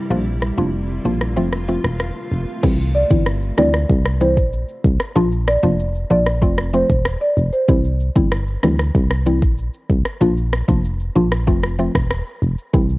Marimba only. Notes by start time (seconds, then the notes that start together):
2.95 D5
3.58 D5
4.21 C5
5.48 D5
6.11 D5
6.74 C5
7.21 D5
7.53 C5